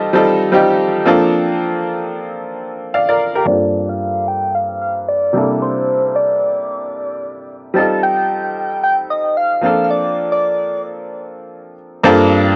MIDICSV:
0, 0, Header, 1, 3, 480
1, 0, Start_track
1, 0, Key_signature, -2, "minor"
1, 0, Tempo, 535714
1, 1191, Time_signature, 4, 2, 24, 8
1, 11253, End_track
2, 0, Start_track
2, 0, Title_t, "Soft synth lead"
2, 0, Program_c, 0, 80
2, 3114, Note_on_c, 0, 74, 107
2, 3488, Note_on_c, 0, 77, 99
2, 3501, Note_off_c, 0, 74, 0
2, 3835, Note_on_c, 0, 79, 103
2, 3848, Note_off_c, 0, 77, 0
2, 4076, Note_on_c, 0, 77, 111
2, 4089, Note_off_c, 0, 79, 0
2, 4310, Note_off_c, 0, 77, 0
2, 4315, Note_on_c, 0, 77, 94
2, 4422, Note_off_c, 0, 77, 0
2, 4556, Note_on_c, 0, 74, 96
2, 5000, Note_off_c, 0, 74, 0
2, 5036, Note_on_c, 0, 72, 97
2, 5517, Note_on_c, 0, 74, 92
2, 5530, Note_off_c, 0, 72, 0
2, 6714, Note_off_c, 0, 74, 0
2, 6956, Note_on_c, 0, 81, 119
2, 7177, Note_off_c, 0, 81, 0
2, 7197, Note_on_c, 0, 79, 104
2, 7878, Note_off_c, 0, 79, 0
2, 7916, Note_on_c, 0, 79, 108
2, 8023, Note_off_c, 0, 79, 0
2, 8156, Note_on_c, 0, 75, 93
2, 8396, Note_on_c, 0, 77, 95
2, 8409, Note_off_c, 0, 75, 0
2, 8630, Note_off_c, 0, 77, 0
2, 8636, Note_on_c, 0, 77, 86
2, 8820, Note_off_c, 0, 77, 0
2, 8820, Note_on_c, 0, 77, 71
2, 8876, Note_on_c, 0, 74, 95
2, 8889, Note_off_c, 0, 77, 0
2, 9243, Note_off_c, 0, 74, 0
2, 9248, Note_on_c, 0, 74, 80
2, 9692, Note_off_c, 0, 74, 0
2, 11253, End_track
3, 0, Start_track
3, 0, Title_t, "Grand piano"
3, 0, Program_c, 1, 0
3, 0, Control_c, 1, 64, 127
3, 0, Note_on_c, 1, 55, 114
3, 0, Note_on_c, 1, 60, 109
3, 0, Note_on_c, 1, 63, 108
3, 0, Note_on_c, 1, 65, 106
3, 0, Note_on_c, 1, 69, 127
3, 117, Note_off_c, 1, 55, 0
3, 117, Note_on_c, 1, 55, 94
3, 122, Note_off_c, 1, 60, 0
3, 122, Note_on_c, 1, 60, 81
3, 128, Note_off_c, 1, 63, 0
3, 128, Note_on_c, 1, 63, 80
3, 133, Note_off_c, 1, 65, 0
3, 133, Note_on_c, 1, 65, 80
3, 138, Note_off_c, 1, 69, 0
3, 138, Note_on_c, 1, 69, 98
3, 403, Note_off_c, 1, 55, 0
3, 406, Note_off_c, 1, 60, 0
3, 408, Note_off_c, 1, 63, 0
3, 411, Note_off_c, 1, 65, 0
3, 414, Note_off_c, 1, 69, 0
3, 464, Note_on_c, 1, 55, 88
3, 470, Note_on_c, 1, 60, 76
3, 475, Note_on_c, 1, 63, 77
3, 480, Note_on_c, 1, 65, 80
3, 486, Note_on_c, 1, 67, 98
3, 939, Note_off_c, 1, 60, 0
3, 944, Note_on_c, 1, 53, 95
3, 948, Note_off_c, 1, 55, 0
3, 948, Note_off_c, 1, 65, 0
3, 949, Note_on_c, 1, 58, 84
3, 953, Note_off_c, 1, 63, 0
3, 953, Note_on_c, 1, 60, 88
3, 957, Note_on_c, 1, 62, 86
3, 958, Note_off_c, 1, 67, 0
3, 961, Note_on_c, 1, 65, 83
3, 963, Control_c, 1, 64, 0
3, 965, Note_on_c, 1, 69, 102
3, 1141, Control_c, 1, 64, 127
3, 1720, Note_off_c, 1, 53, 0
3, 1722, Note_off_c, 1, 58, 0
3, 1725, Note_off_c, 1, 60, 0
3, 1727, Note_off_c, 1, 62, 0
3, 1729, Note_off_c, 1, 65, 0
3, 1731, Note_off_c, 1, 69, 0
3, 2635, Note_on_c, 1, 77, 70
3, 2640, Note_on_c, 1, 74, 58
3, 2753, Note_off_c, 1, 74, 0
3, 2758, Note_off_c, 1, 77, 0
3, 2766, Note_on_c, 1, 74, 75
3, 2772, Note_on_c, 1, 70, 58
3, 2993, Note_off_c, 1, 70, 0
3, 2993, Note_off_c, 1, 74, 0
3, 3006, Note_on_c, 1, 70, 68
3, 3012, Note_on_c, 1, 67, 58
3, 3094, Note_on_c, 1, 43, 60
3, 3102, Note_on_c, 1, 58, 56
3, 3110, Note_on_c, 1, 60, 56
3, 3118, Note_on_c, 1, 62, 57
3, 3121, Control_c, 1, 64, 0
3, 3127, Note_on_c, 1, 65, 58
3, 3136, Note_on_c, 1, 69, 70
3, 3232, Note_off_c, 1, 70, 0
3, 3235, Note_off_c, 1, 67, 0
3, 3299, Control_c, 1, 64, 127
3, 4748, Note_off_c, 1, 43, 0
3, 4753, Note_off_c, 1, 58, 0
3, 4757, Note_off_c, 1, 60, 0
3, 4761, Note_off_c, 1, 62, 0
3, 4765, Note_off_c, 1, 65, 0
3, 4770, Note_off_c, 1, 69, 0
3, 4774, Note_on_c, 1, 48, 63
3, 4783, Note_on_c, 1, 55, 57
3, 4791, Note_on_c, 1, 58, 57
3, 4799, Note_on_c, 1, 62, 58
3, 4802, Control_c, 1, 64, 0
3, 4807, Note_on_c, 1, 64, 57
3, 4816, Note_on_c, 1, 69, 69
3, 4942, Control_c, 1, 64, 127
3, 6666, Note_off_c, 1, 48, 0
3, 6671, Note_off_c, 1, 55, 0
3, 6675, Note_off_c, 1, 58, 0
3, 6679, Note_off_c, 1, 62, 0
3, 6683, Note_off_c, 1, 64, 0
3, 6687, Note_off_c, 1, 69, 0
3, 6933, Note_on_c, 1, 55, 65
3, 6944, Note_on_c, 1, 60, 59
3, 6955, Note_on_c, 1, 63, 60
3, 6962, Control_c, 1, 64, 0
3, 6965, Note_on_c, 1, 65, 58
3, 6975, Note_on_c, 1, 69, 75
3, 7122, Control_c, 1, 64, 127
3, 8588, Note_off_c, 1, 55, 0
3, 8593, Note_off_c, 1, 60, 0
3, 8599, Note_off_c, 1, 63, 0
3, 8604, Note_off_c, 1, 65, 0
3, 8609, Note_off_c, 1, 69, 0
3, 8614, Note_on_c, 1, 53, 65
3, 8622, Note_on_c, 1, 58, 57
3, 8630, Note_on_c, 1, 60, 58
3, 8639, Note_on_c, 1, 62, 60
3, 8643, Control_c, 1, 64, 0
3, 8647, Note_on_c, 1, 65, 57
3, 8655, Note_on_c, 1, 69, 71
3, 8820, Control_c, 1, 64, 127
3, 10506, Note_off_c, 1, 53, 0
3, 10510, Note_off_c, 1, 58, 0
3, 10515, Note_off_c, 1, 60, 0
3, 10519, Note_off_c, 1, 62, 0
3, 10523, Note_off_c, 1, 65, 0
3, 10527, Note_off_c, 1, 69, 0
3, 10784, Note_on_c, 1, 43, 120
3, 10788, Note_on_c, 1, 58, 115
3, 10792, Note_on_c, 1, 60, 106
3, 10797, Note_on_c, 1, 62, 112
3, 10801, Note_on_c, 1, 65, 112
3, 10804, Control_c, 1, 64, 0
3, 10805, Note_on_c, 1, 69, 127
3, 10937, Control_c, 1, 64, 127
3, 11253, Note_off_c, 1, 43, 0
3, 11253, Note_off_c, 1, 58, 0
3, 11253, Note_off_c, 1, 60, 0
3, 11253, Note_off_c, 1, 62, 0
3, 11253, Note_off_c, 1, 65, 0
3, 11253, Note_off_c, 1, 69, 0
3, 11253, End_track
0, 0, End_of_file